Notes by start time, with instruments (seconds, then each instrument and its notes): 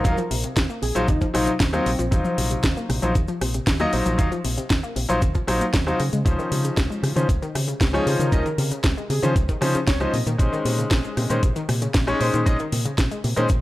Already playing: analog synth lead A#4
0.04 fingered electric bass D#2, synth arpeggio sound C3, grand piano F#3 D#4 F4 F5, kick, closed hi-hat, cabasa
0.17 synth arpeggio sound F3, closed hi-hat, cabasa
0.31 fingered electric bass A#1, synth arpeggio sound C3, open hi-hat
0.43 synth arpeggio sound C3, muted fingered electric bass stroke, closed hi-hat, cabasa
0.56 fingered electric bass D#2, synth arpeggio sound C3, kick, snare, closed hi-hat, cabasa
0.70 synth arpeggio sound A#3, cabasa
0.82 fingered electric bass A#1, synth arpeggio sound C3, analog synth lead G#4, open hi-hat
0.95 fingered electric bass A#1, synth arpeggio sound F3, grand piano F#3 D#4 F4 C5, closed hi-hat, cabasa
1.08 fingered electric bass D#2, synth arpeggio sound C3, analog synth lead D#4, kick, closed hi-hat, cabasa
1.21 synth arpeggio sound F3, kick, closed hi-hat, cabasa
1.34 fingered electric bass A#1, synth arpeggio sound C3, grand piano F#3 D#4 F4 C5, analog synth lead D#4, cross-stick, open hi-hat
1.47 synth arpeggio sound C3, muted fingered electric bass stroke, closed hi-hat, cabasa
1.60 fingered electric bass D#2, synth arpeggio sound C3, kick, snare, closed hi-hat, cabasa
1.73 grand piano F#3 D#4 F4 C5, synth arpeggio sound A#3, analog synth lead C4, cross-stick, cabasa
1.86 fingered electric bass A#1, synth arpeggio sound C3, open hi-hat
1.99 fingered electric bass A#1, synth arpeggio sound F3, closed hi-hat, cabasa
2.11 fingered electric bass D#2, synth arpeggio sound C3, grand piano F#3 D#4 F4 C5, kick, closed hi-hat, cabasa
2.25 synth arpeggio sound F3, cabasa
2.38 fingered electric bass A#1, synth arpeggio sound C3, open hi-hat
2.50 synth arpeggio sound C3, closed hi-hat, cabasa
2.63 fingered electric bass D#2, synth arpeggio sound C3, kick, snare, closed hi-hat, cabasa
2.77 synth arpeggio sound A#3, cabasa
2.89 fingered electric bass A#1, synth arpeggio sound C3, cross-stick, open hi-hat
3.02 fingered electric bass A#1, synth arpeggio sound F3, grand piano F#3 D#4 F4 C5, closed hi-hat, cabasa
3.15 fingered electric bass D#2, synth arpeggio sound C3, kick, closed hi-hat, cabasa
3.28 synth arpeggio sound F3, closed hi-hat, cabasa
3.41 fingered electric bass A#1, synth arpeggio sound C3, cross-stick, open hi-hat
3.54 synth arpeggio sound C3, closed hi-hat, cabasa
3.67 fingered electric bass D#2, synth arpeggio sound C3, kick, snare, closed hi-hat, cabasa
3.79 grand piano F#3 D#4 F4 D#5, synth arpeggio sound A#3, cross-stick, cabasa
3.92 fingered electric bass A#1, synth arpeggio sound C3, grand piano F#3 D#4 F4 C5, open hi-hat
4.06 fingered electric bass A#1, synth arpeggio sound F3, closed hi-hat, cabasa
4.18 fingered electric bass D#2, synth arpeggio sound C3, grand piano F#3 D#4 F4 F5, kick, closed hi-hat, cabasa
4.32 synth arpeggio sound F3, closed hi-hat, cabasa
4.44 fingered electric bass A#1, synth arpeggio sound C3, open hi-hat
4.58 synth arpeggio sound C3, muted fingered electric bass stroke, closed hi-hat, cabasa
4.70 fingered electric bass D#2, synth arpeggio sound C3, kick, snare, closed hi-hat, cabasa
4.83 synth arpeggio sound A#3, cabasa
4.96 fingered electric bass A#1, synth arpeggio sound C3, open hi-hat
5.09 fingered electric bass A#1, synth arpeggio sound F3, grand piano F#3 D#4 F4 C5, closed hi-hat, cabasa
5.22 fingered electric bass D#2, synth arpeggio sound C3, kick, closed hi-hat, cabasa
5.35 synth arpeggio sound F3, kick, closed hi-hat, cabasa
5.47 fingered electric bass A#1, synth arpeggio sound C3, grand piano F#3 D#4 F4 C5, cross-stick, open hi-hat
5.61 synth arpeggio sound A#3, muted fingered electric bass stroke, closed hi-hat, cabasa
5.74 fingered electric bass D#2, synth arpeggio sound F#3, kick, snare, closed hi-hat, cabasa
5.86 synth arpeggio sound C3, grand piano F#3 D#4 F4 C5, cross-stick, cabasa
6.00 synth arpeggio sound C#3, fingered electric bass C#3, open hi-hat
6.13 fingered electric bass C#3, synth arpeggio sound G#3, closed hi-hat, cabasa
6.25 fingered electric bass C#2, synth arpeggio sound C3, grand piano F3 C#4 D#4 C5, kick, closed hi-hat, cabasa
6.39 synth arpeggio sound D#3, cabasa
6.51 synth arpeggio sound C3, fingered electric bass C#3, open hi-hat
6.64 synth arpeggio sound C#3, closed hi-hat, cabasa
6.77 fingered electric bass C#2, synth arpeggio sound C3, kick, snare, closed hi-hat, cabasa
6.90 synth arpeggio sound G#3, cabasa
7.03 synth arpeggio sound C3, fingered electric bass C#3, cross-stick, open hi-hat
7.16 fingered electric bass C#3, synth arpeggio sound D#3, grand piano F3 C#4 D#4 C5, closed hi-hat, cabasa
7.29 fingered electric bass C#2, synth arpeggio sound C3, kick, closed hi-hat, cabasa
7.42 synth arpeggio sound D#3, closed hi-hat, cabasa
7.55 synth arpeggio sound C3, fingered electric bass C#3, cross-stick, open hi-hat
7.68 synth arpeggio sound C#3, closed hi-hat, cabasa
7.81 fingered electric bass C#2, synth arpeggio sound C3, kick, snare, closed hi-hat, cabasa
7.93 grand piano F3 C#4 D#4 C#5, synth arpeggio sound G#3, analog synth lead G#4, cross-stick, cabasa
8.06 synth arpeggio sound C3, fingered electric bass C#3, grand piano F3 C#4 D#4 C5, analog synth lead G#4, open hi-hat
8.19 fingered electric bass C#3, synth arpeggio sound D#3, analog synth lead A#4, closed hi-hat, cabasa
8.32 fingered electric bass C#2, synth arpeggio sound C3, grand piano F3 C#4 D#4 D#5, kick, closed hi-hat, cabasa
8.45 synth arpeggio sound D#3, closed hi-hat, cabasa
8.58 synth arpeggio sound C3, fingered electric bass C#3, open hi-hat
8.71 synth arpeggio sound C#3, muted fingered electric bass stroke, closed hi-hat, cabasa
8.84 fingered electric bass C#2, synth arpeggio sound C3, kick, snare, closed hi-hat, cabasa
8.97 synth arpeggio sound G#3, cabasa
9.10 synth arpeggio sound C3, fingered electric bass C#3, analog synth lead G#4, open hi-hat
9.22 fingered electric bass C#3, synth arpeggio sound D#3, grand piano F3 C#4 D#4 C5, closed hi-hat, cabasa
9.36 fingered electric bass C#2, synth arpeggio sound C3, kick, closed hi-hat, cabasa
9.49 synth arpeggio sound D#3, kick, closed hi-hat, cabasa
9.61 synth arpeggio sound C3, fingered electric bass C#3, grand piano F3 C#4 D#4 C5, cross-stick, open hi-hat
9.75 synth arpeggio sound C#3, muted fingered electric bass stroke, closed hi-hat, cabasa
9.87 fingered electric bass C#2, synth arpeggio sound C3, analog synth lead C#5, kick, snare, closed hi-hat, cabasa
10.00 grand piano F3 C#4 D#4 C5, synth arpeggio sound G#3, analog synth lead D#5, cross-stick, cabasa
10.13 fingered electric bass A#2, synth arpeggio sound C3, open hi-hat
10.26 fingered electric bass A#2, synth arpeggio sound D#3, closed hi-hat, cabasa
10.38 fingered electric bass A#1, synth arpeggio sound C3, grand piano G#3 C#4 D#4 C5, kick, closed hi-hat, cabasa
10.53 synth arpeggio sound D#3, cabasa
10.65 fingered electric bass A#2, synth arpeggio sound C3, open hi-hat
10.79 synth arpeggio sound C#3, closed hi-hat, cabasa
10.91 fingered electric bass A#1, synth arpeggio sound C3, kick, snare, closed hi-hat, cabasa
11.04 synth arpeggio sound G#3, cabasa
11.17 fingered electric bass A#2, synth arpeggio sound C3, cross-stick, open hi-hat
11.30 fingered electric bass A#2, synth arpeggio sound D#3, grand piano G#3 C#4 D#4 C5, closed hi-hat, cabasa
11.43 fingered electric bass A#1, synth arpeggio sound C3, kick, closed hi-hat, cabasa
11.56 synth arpeggio sound D#3, closed hi-hat, cabasa
11.68 fingered electric bass A#2, synth arpeggio sound C3, cross-stick, open hi-hat
11.82 synth arpeggio sound C#3, closed hi-hat, cabasa
11.94 fingered electric bass A#1, synth arpeggio sound C3, kick, snare, closed hi-hat, cabasa
12.07 grand piano G#3 C#4 D#4 C#5, synth arpeggio sound G#3, cross-stick, cabasa
12.20 fingered electric bass A#2, synth arpeggio sound C3, grand piano G#3 C#4 D#4 C5, open hi-hat
12.34 fingered electric bass A#2, synth arpeggio sound D#3, closed hi-hat, cabasa
12.46 fingered electric bass A#1, synth arpeggio sound C3, grand piano G#3 C#4 D#4 D#5, kick, closed hi-hat, cabasa
12.59 synth arpeggio sound D#3, closed hi-hat, cabasa
12.72 fingered electric bass A#2, synth arpeggio sound C3, open hi-hat
12.85 synth arpeggio sound C#3, muted fingered electric bass stroke, closed hi-hat, cabasa
12.98 fingered electric bass A#1, synth arpeggio sound C3, kick, snare, closed hi-hat, cabasa
13.11 synth arpeggio sound G#3, closed hi-hat, cabasa
13.24 fingered electric bass A#2, synth arpeggio sound C3, open hi-hat
13.36 fingered electric bass A#2, synth arpeggio sound D#3, grand piano G#3 C#4 D#4 C5, closed hi-hat, cabasa
13.49 fingered electric bass A#1, synth arpeggio sound C3, kick, closed hi-hat, cabasa